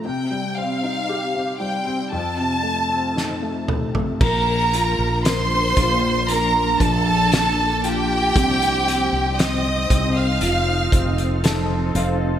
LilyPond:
<<
  \new Staff \with { instrumentName = "Violin section" } { \time 4/4 \key bes \major \tempo 4 = 58 g''8 f''4 g''8 a''4. r8 | <bes' bes''>4 <c'' c'''>4 <bes' bes''>8 <a' a''>4 <g' g''>8~ | <g' g''>4 <ees'' ees'''>8. <f'' f'''>4 r4 r16 | }
  \new Staff \with { instrumentName = "Ambient pad" } { \time 4/4 \key bes \major r1 | <f bes d'>1 | <c c' ees'>2 <f c' a'>2 | }
  \new Staff \with { instrumentName = "Grand piano" } { \time 4/4 \key bes \major c16 g16 c'16 ees'16 g'16 c'16 g16 c'16 f,16 c16 a16 c'16 ees'16 a16 c16 a16 | bes8 f'8 bes8 f'8 bes4. f'8 | c'8 c'8 c'8 c'8 f8 c'8 <a' a''>8 <c'' f''>8 | }
  \new Staff \with { instrumentName = "Fretless electric bass" } { \clef bass \time 4/4 \key bes \major r1 | bes,,8. bes,,8. bes,,4 bes,,4. | c,8. c,8. c,8 f,,8 f,,4 f,,8 | }
  \new DrumStaff \with { instrumentName = "Drums" } \drummode { \time 4/4 r4 r4 r4 sn8 toml16 tomfh16 | <cymc bd>8 hh8 <hh sn>8 <hh bd>8 hh8 <hh bd>8 <hh sn>8 hh8 | <hh bd>16 hh16 hh8 <hh sn>8 <hh bd>8 hh8 <hh bd>16 hh16 <hh sn>8 hh8 | }
>>